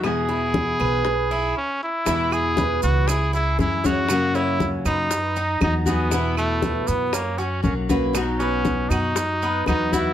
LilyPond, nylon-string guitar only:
\new Staff \with { instrumentName = "Nylon-string guitar" } { \time 4/4 \key e \major \tempo 4 = 118 <b, e gis b e'>2 r2 | <b, e gis b e'>2 r4 <e gis cis' e'>8 <e gis cis' e'>8 | <cis fis ais cis' fis'>2 r4 <fis b dis' fis'>8 <fis b dis' fis'>8 | <b, e b e'>2 r4 <fis ais cis' fis'>8 <fis ais cis' fis'>8 |
<b, fis b dis' fis'>2 r4 <fis b dis' fis'>8 <fis b dis' fis'>8 | }